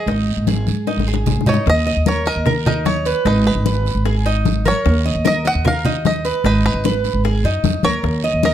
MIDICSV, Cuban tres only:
0, 0, Header, 1, 2, 480
1, 0, Start_track
1, 0, Tempo, 398406
1, 87, Time_signature, 4, 2, 24, 8
1, 10288, End_track
2, 0, Start_track
2, 0, Title_t, "Cuban tres"
2, 0, Program_c, 0, 25
2, 92, Note_on_c, 0, 63, 68
2, 555, Note_off_c, 0, 63, 0
2, 573, Note_on_c, 0, 68, 64
2, 1036, Note_off_c, 0, 68, 0
2, 1051, Note_on_c, 0, 63, 75
2, 1282, Note_off_c, 0, 63, 0
2, 1297, Note_on_c, 0, 68, 68
2, 1758, Note_off_c, 0, 68, 0
2, 1771, Note_on_c, 0, 63, 81
2, 2002, Note_off_c, 0, 63, 0
2, 2248, Note_on_c, 0, 75, 72
2, 2481, Note_off_c, 0, 75, 0
2, 2490, Note_on_c, 0, 70, 70
2, 2722, Note_off_c, 0, 70, 0
2, 2735, Note_on_c, 0, 75, 71
2, 2964, Note_off_c, 0, 75, 0
2, 2967, Note_on_c, 0, 70, 71
2, 3200, Note_off_c, 0, 70, 0
2, 3207, Note_on_c, 0, 63, 86
2, 3672, Note_off_c, 0, 63, 0
2, 3688, Note_on_c, 0, 71, 78
2, 3920, Note_off_c, 0, 71, 0
2, 3925, Note_on_c, 0, 63, 73
2, 4391, Note_off_c, 0, 63, 0
2, 4411, Note_on_c, 0, 71, 68
2, 4874, Note_off_c, 0, 71, 0
2, 4885, Note_on_c, 0, 68, 73
2, 5118, Note_off_c, 0, 68, 0
2, 5130, Note_on_c, 0, 63, 91
2, 5593, Note_off_c, 0, 63, 0
2, 5608, Note_on_c, 0, 70, 72
2, 6072, Note_off_c, 0, 70, 0
2, 6091, Note_on_c, 0, 75, 75
2, 6321, Note_off_c, 0, 75, 0
2, 6321, Note_on_c, 0, 70, 74
2, 6556, Note_off_c, 0, 70, 0
2, 6566, Note_on_c, 0, 75, 68
2, 6798, Note_off_c, 0, 75, 0
2, 6802, Note_on_c, 0, 70, 74
2, 7036, Note_off_c, 0, 70, 0
2, 7052, Note_on_c, 0, 63, 88
2, 7514, Note_off_c, 0, 63, 0
2, 7529, Note_on_c, 0, 71, 74
2, 7760, Note_off_c, 0, 71, 0
2, 7776, Note_on_c, 0, 63, 79
2, 8236, Note_off_c, 0, 63, 0
2, 8252, Note_on_c, 0, 71, 73
2, 8714, Note_off_c, 0, 71, 0
2, 8731, Note_on_c, 0, 68, 68
2, 8961, Note_off_c, 0, 68, 0
2, 8973, Note_on_c, 0, 63, 88
2, 9434, Note_off_c, 0, 63, 0
2, 9453, Note_on_c, 0, 70, 73
2, 9914, Note_off_c, 0, 70, 0
2, 9927, Note_on_c, 0, 75, 78
2, 10159, Note_off_c, 0, 75, 0
2, 10184, Note_on_c, 0, 70, 73
2, 10288, Note_off_c, 0, 70, 0
2, 10288, End_track
0, 0, End_of_file